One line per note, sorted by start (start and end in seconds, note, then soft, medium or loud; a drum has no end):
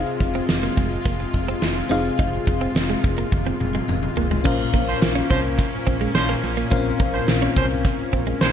0.00 4.41 C3 medium
0.00 4.41 G#3 medium
0.00 1.86 C4 medium
0.00 1.86 F4 medium
0.00 4.41 F4 medium
0.00 1.87 G#4 medium
0.00 1.87 F5 medium
0.07 closed hi-hat soft
0.20 0.41 F1 medium
0.20 muted clean electric guitar stroke soft
0.20 kick medium
0.20 closed hi-hat medium
0.34 0.44 C4 medium
0.34 closed hi-hat medium
0.49 0.69 F1 loud
0.49 muted clean electric guitar stroke soft
0.49 snare loud
0.49 tambourine medium
0.63 0.72 A#3 medium
0.63 closed hi-hat medium
0.77 0.98 F1 loud
0.77 0.86 G#3 medium
0.77 kick loud
0.77 closed hi-hat medium
0.92 closed hi-hat soft
1.05 1.26 F1 loud
1.05 1.15 A#3 medium
1.05 kick loud
1.05 closed hi-hat loud
1.19 muted clean electric guitar stroke soft
1.19 closed hi-hat soft
1.33 1.54 F1 medium
1.33 kick medium
1.33 closed hi-hat medium
1.48 1.57 C4 medium
1.48 closed hi-hat soft
1.62 1.82 F1 loud
1.62 snare loud
1.62 tambourine medium
1.76 closed hi-hat soft
1.89 2.10 F1 loud
1.89 4.12 C4 medium
1.89 2.00 D#4 medium
1.89 4.13 F4 medium
1.89 4.13 G#4 medium
1.89 4.13 F5 medium
1.89 open hi-hat medium
2.05 closed hi-hat medium
2.19 2.39 F1 loud
2.19 2.28 D#4 medium
2.19 kick loud
2.19 closed hi-hat medium
2.33 closed hi-hat soft
2.47 2.68 F1 loud
2.47 muted clean electric guitar stroke soft
2.47 kick medium
2.47 closed hi-hat medium
2.61 2.70 C4 medium
2.61 closed hi-hat medium
2.75 2.95 F1 loud
2.75 snare loud
2.75 tambourine medium
2.90 2.99 G#3 medium
2.90 closed hi-hat medium
3.04 3.24 F1 loud
3.04 muted clean electric guitar stroke soft
3.04 kick loud
3.04 closed hi-hat medium
3.18 3.27 A#3 medium
3.18 closed hi-hat soft
3.32 3.52 F1 loud
3.32 kick loud
3.32 high tom medium
3.46 3.55 C4 medium
3.46 high tom medium
3.60 3.81 F1 medium
3.60 muted clean electric guitar stroke soft
3.60 mid tom medium
3.75 3.84 G#3 medium
3.75 mid tom medium
3.88 4.09 F1 loud
3.88 muted clean electric guitar stroke soft
3.88 mid tom medium
3.88 tambourine medium
4.03 mid tom medium
4.17 4.37 F1 loud
4.17 4.26 A#3 medium
4.17 floor tom medium
4.31 4.40 G#3 medium
4.31 floor tom medium
4.44 4.66 A#1 loud
4.44 8.52 A#2 medium
4.44 5.26 A#2 medium
4.44 8.52 A#3 medium
4.44 6.67 C#4 medium
4.44 8.52 C#4 medium
4.44 4.54 C#4 medium
4.44 6.67 F4 medium
4.44 6.68 A#4 medium
4.44 6.68 C5 medium
4.44 6.68 F5 medium
4.44 kick loud
4.44 crash loud
4.60 closed hi-hat medium
4.74 4.94 A#1 loud
4.74 4.83 A#3 medium
4.74 kick loud
4.74 closed hi-hat medium
4.87 5.00 F3 medium
4.87 5.00 C#4 medium
4.87 5.00 C5 medium
4.87 muted clean electric guitar stroke soft
4.87 closed hi-hat medium
5.02 5.22 A#1 loud
5.02 muted clean electric guitar stroke soft
5.02 snare loud
5.02 tambourine medium
5.15 5.25 C#4 medium
5.15 closed hi-hat medium
5.30 5.61 C2 loud
5.30 5.40 F3 loud
5.30 5.39 C4 medium
5.30 5.40 C#4 loud
5.30 5.40 C5 loud
5.30 kick loud
5.30 closed hi-hat medium
5.45 closed hi-hat medium
5.58 muted clean electric guitar stroke soft
5.58 kick loud
5.58 closed hi-hat loud
5.73 closed hi-hat soft
5.87 6.07 A#1 medium
5.87 5.96 C4 medium
5.87 kick medium
5.87 closed hi-hat medium
6.01 6.10 G#3 medium
6.01 closed hi-hat medium
6.15 6.35 A#1 loud
6.15 6.33 F3 medium
6.15 6.33 C#4 loud
6.15 6.33 C5 loud
6.15 snare loud
6.15 tambourine medium
6.29 6.38 A#3 medium
6.29 closed hi-hat medium
6.43 6.64 A#1 loud
6.43 muted clean electric guitar stroke soft
6.43 open hi-hat medium
6.57 6.66 A#3 medium
6.57 closed hi-hat medium
6.70 6.92 A#1 loud
6.70 7.52 A#2 medium
6.70 6.77 C4 medium
6.70 6.80 C#4 medium
6.70 8.52 F4 medium
6.70 8.52 A#4 medium
6.70 8.52 C5 medium
6.70 8.52 F5 medium
6.70 kick loud
6.70 closed hi-hat medium
6.77 8.52 C#4 medium
6.86 closed hi-hat soft
7.00 7.20 A#1 medium
7.00 7.09 A#3 medium
7.00 kick loud
7.00 closed hi-hat medium
7.14 7.26 F3 medium
7.14 7.26 C#4 medium
7.14 7.26 C5 loud
7.14 muted clean electric guitar stroke soft
7.14 closed hi-hat medium
7.28 7.48 A#1 loud
7.28 muted clean electric guitar stroke soft
7.28 snare loud
7.28 tambourine medium
7.42 7.51 C#4 medium
7.42 closed hi-hat medium
7.56 7.87 C2 medium
7.56 7.66 F3 loud
7.56 7.66 C4 medium
7.56 7.65 C#4 medium
7.56 7.65 C5 loud
7.56 kick loud
7.56 closed hi-hat medium
7.71 closed hi-hat medium
7.85 muted clean electric guitar stroke soft
7.85 kick loud
7.85 closed hi-hat loud
7.99 closed hi-hat soft
8.13 8.33 A#1 medium
8.13 8.22 C4 medium
8.13 kick medium
8.13 closed hi-hat medium
8.27 8.36 G#3 medium
8.27 closed hi-hat medium
8.41 8.52 A#1 loud
8.41 8.52 G#3 loud
8.41 8.52 D#4 loud
8.41 8.52 C5 loud
8.41 snare loud
8.41 tambourine medium